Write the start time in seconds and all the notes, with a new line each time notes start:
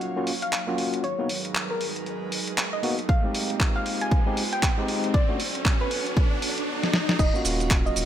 Already playing: D#1 F#3 A#3 C#4 D#4 F4 F#4 C#5 F5 F#5, riser
0.01 closed hi-hat
0.16 A#3 C#4 F4 F#4
0.27 open hi-hat
0.42 F5, closed hi-hat
0.52 clap, closed hi-hat
0.67 A#1 A#3 C#4 F4 F#4
0.78 open hi-hat
0.94 closed hi-hat
1.04 G#1 G#4 A#4 B4 C#5, closed hi-hat
1.19 A#3 B3 D#4 F#4
1.29 G#1, open hi-hat
1.45 closed hi-hat
1.55 clap, closed hi-hat
1.71 A#4
1.81 G#1, open hi-hat
1.96 closed hi-hat
2.06 closed hi-hat
2.32 open hi-hat
2.48 closed hi-hat
2.58 clap, closed hi-hat
2.73 D#1 D#5
2.83 A#3 B3 D#4 F#4, open hi-hat
2.99 closed hi-hat
3.09 G#3 F4 G4 C5 F5, kick, closed hi-hat
3.23 G#3 C4 D#4 G4
3.34 F1, open hi-hat
3.50 closed hi-hat
3.60 kick, clap, closed hi-hat
3.76 F5
3.86 F1, open hi-hat
4.01 G#5, closed hi-hat
4.11 kick, closed hi-hat
4.26 G#3 C4 D#4 G4
4.37 open hi-hat
4.53 G5, closed hi-hat
4.63 kick, clap, closed hi-hat
4.78 C2 G#3 C4 D#4 G4
4.88 open hi-hat
5.04 closed hi-hat
5.14 B3 D4 F#4 A4 C#5 D5, kick, closed hi-hat
5.29 A3 C#4 D4 F#4
5.40 B1, open hi-hat
5.55 closed hi-hat
5.65 kick, clap, closed hi-hat
5.81 B4
5.91 B1, open hi-hat
6.07 closed hi-hat
6.17 kick, closed hi-hat
6.42 open hi-hat
6.58 F#1, closed hi-hat
6.83 snare
6.94 snare
7.09 snare
7.19 D#1 F#3 D#4 A#4 C#5 D#5 F5, kick, closed hi-hat, crash, shaker
7.34 A#3 C#4 F4 F#4, shaker
7.45 D#1, open hi-hat, shaker
7.60 closed hi-hat, shaker
7.70 kick, clap, closed hi-hat, shaker
7.86 D#5, shaker
7.96 D#1, open hi-hat, shaker